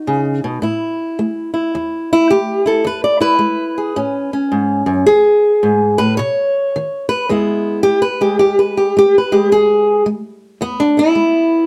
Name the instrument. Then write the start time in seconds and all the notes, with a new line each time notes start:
steel-string acoustic guitar
Already playing: D#4 F#4
0.07 C#3
0.44 B2
0.62 A2 E4
1.19 A3
1.54 E4
1.75 E2
2.13 E4
2.30 A3 G4
2.66 E4 A4
2.85 E2 B4
3.04 D5
3.20 E4 B4
3.39 G#3
3.78 G#4
3.96 A2 C#4
4.33 C#4
4.52 G#2
4.86 F#2
5.07 E2 G#4
5.63 G#2
5.98 A2 B4
6.17 B2 C#5
6.76 D#3
7.09 B4
7.29 E2 G#3 B3 E4
7.83 G#3 G4
8.02 B4
8.21 G#3 G4
8.39 E2 G4
8.59 B4
8.77 G4
8.97 G#3 G4
9.18 B4
9.32 G#3 G4
9.52 E2 G#4
10.06 G#3
10.61 E2 B3
10.80 D4
10.97 B3 E4
11.15 G#3